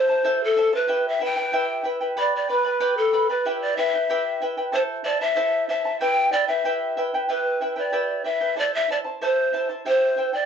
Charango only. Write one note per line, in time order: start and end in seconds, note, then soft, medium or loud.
0.09 0.24 E4 soft
0.09 0.24 C5 soft
0.09 0.24 A5 medium
0.24 0.56 E4 medium
0.24 0.57 A4 medium
0.24 0.57 C5 medium
0.24 0.56 E5 medium
0.24 0.57 A5 medium
0.57 0.73 E4 medium
0.57 0.72 C5 medium
0.57 0.73 E5 medium
0.57 0.72 A5 medium
0.73 0.87 E4 soft
0.73 0.88 C5 soft
0.73 0.89 A5 medium
0.88 1.20 E4 medium
0.88 1.21 G4 medium
0.88 1.20 B4 medium
0.88 1.19 E5 medium
0.88 1.20 G5 medium
1.20 1.36 E4 medium
1.20 1.36 B4 medium
1.20 1.37 E5 medium
1.20 1.35 G5 medium
1.36 1.52 E4 soft
1.36 1.52 B4 soft
1.36 1.53 G5 soft
1.53 1.83 E4 medium
1.53 1.85 G4 medium
1.53 1.84 B4 medium
1.53 1.83 E5 medium
1.53 1.84 G5 medium
1.84 2.01 E4 medium
1.84 2.00 B4 medium
1.84 2.01 E5 medium
1.84 1.99 G5 medium
2.01 2.17 E4 soft
2.01 2.16 B4 soft
2.01 2.16 G5 soft
2.17 2.49 G4 medium
2.17 2.48 B4 medium
2.17 2.49 D5 medium
2.17 2.47 G5 medium
2.17 2.49 B5 medium
2.49 2.65 B4 medium
2.49 2.64 D5 medium
2.49 2.65 G5 medium
2.49 2.63 B5 medium
2.65 2.80 B4 soft
2.65 2.79 D5 soft
2.65 2.80 B5 medium
2.80 3.13 G4 medium
2.80 3.12 B4 medium
2.80 3.13 D5 medium
2.80 3.12 G5 medium
2.80 3.13 B5 medium
3.13 3.29 B4 medium
3.13 3.29 D5 medium
3.13 3.29 G5 medium
3.13 3.28 B5 medium
3.29 3.45 B4 soft
3.29 3.46 D5 soft
3.29 3.46 B5 medium
3.45 3.77 E4 medium
3.45 3.77 G4 medium
3.45 3.77 B4 medium
3.45 3.76 E5 medium
3.45 3.77 G5 medium
3.77 3.94 E4 medium
3.77 3.94 B4 medium
3.77 3.94 E5 medium
3.77 3.93 G5 medium
3.94 4.09 E4 soft
3.94 4.09 B4 soft
3.94 4.09 G5 medium
4.10 4.41 E4 medium
4.10 4.42 G4 medium
4.10 4.41 B4 medium
4.10 4.40 E5 medium
4.10 4.42 G5 medium
4.42 4.57 E4 medium
4.42 4.57 B4 medium
4.42 4.58 E5 medium
4.42 4.56 G5 medium
4.57 4.72 E4 soft
4.57 4.72 B4 soft
4.57 4.73 G5 medium
4.72 5.03 E4 medium
4.72 5.05 A4 medium
4.72 5.04 C5 medium
4.72 5.03 E5 medium
4.72 5.04 A5 medium
5.04 5.21 E4 medium
5.04 5.21 C5 medium
5.04 5.21 E5 medium
5.04 5.20 A5 medium
5.21 5.35 E4 soft
5.21 5.35 C5 soft
5.21 5.36 A5 medium
5.36 5.68 E4 medium
5.36 5.69 A4 medium
5.36 5.69 C5 medium
5.36 5.68 E5 medium
5.36 5.69 A5 medium
5.69 5.85 E4 medium
5.69 5.84 C5 medium
5.69 5.85 E5 medium
5.69 5.83 A5 medium
5.85 6.00 E4 soft
5.85 6.01 C5 soft
5.85 6.01 A5 soft
6.01 6.31 E4 medium
6.01 6.33 G4 medium
6.01 6.31 B4 medium
6.01 6.31 E5 medium
6.01 6.32 G5 medium
6.32 6.49 E4 medium
6.32 6.48 B4 medium
6.32 6.49 E5 medium
6.32 6.47 G5 medium
6.48 6.64 E4 soft
6.48 6.65 B4 soft
6.48 6.65 G5 soft
6.65 6.96 E4 medium
6.65 6.97 G4 medium
6.65 6.97 B4 medium
6.65 6.96 E5 medium
6.65 6.97 G5 medium
6.97 7.14 E4 medium
6.97 7.14 B4 medium
6.97 7.13 E5 medium
6.97 7.13 G5 medium
7.14 7.28 E4 soft
7.14 7.28 B4 medium
7.14 7.29 G5 medium
7.29 7.60 E4 medium
7.29 7.61 G4 medium
7.29 7.60 B4 medium
7.29 7.60 E5 medium
7.29 7.61 G5 medium
7.61 7.77 E4 medium
7.61 7.76 B4 medium
7.61 7.77 E5 medium
7.61 7.75 G5 medium
7.76 7.92 E4 soft
7.76 7.92 B4 soft
7.76 7.92 G5 medium
7.92 8.24 E4 medium
7.92 8.25 G4 medium
7.92 8.24 B4 medium
7.92 8.23 E5 medium
7.92 8.24 G5 medium
8.24 8.41 E4 medium
8.24 8.40 B4 medium
8.24 8.41 E5 medium
8.24 8.40 G5 medium
8.41 8.55 E4 soft
8.41 8.56 B4 soft
8.41 8.57 G5 medium
8.56 8.88 E4 medium
8.56 8.89 A4 medium
8.56 8.89 C5 medium
8.56 8.88 E5 medium
8.56 8.89 A5 medium
8.89 9.05 E4 medium
8.89 9.04 C5 medium
8.89 9.05 E5 medium
8.89 9.03 A5 medium
9.04 9.21 E4 soft
9.04 9.21 C5 soft
9.04 9.21 A5 medium
9.21 9.52 E4 medium
9.21 9.53 A4 medium
9.21 9.53 C5 medium
9.21 9.52 E5 medium
9.21 9.53 A5 medium
9.53 9.70 E4 medium
9.53 9.69 C5 medium
9.53 9.69 E5 medium
9.53 9.68 A5 medium
9.69 9.85 E4 soft
9.69 9.85 C5 medium
9.69 9.85 A5 medium
9.85 10.16 E4 medium
9.85 10.17 G4 medium
9.85 10.17 C5 medium
9.85 10.16 E5 medium
9.85 10.17 G5 medium
10.17 10.33 E4 medium
10.17 10.32 C5 medium
10.17 10.33 E5 medium
10.17 10.32 G5 medium
10.33 10.46 E4 soft
10.33 10.46 C5 soft
10.33 10.46 G5 soft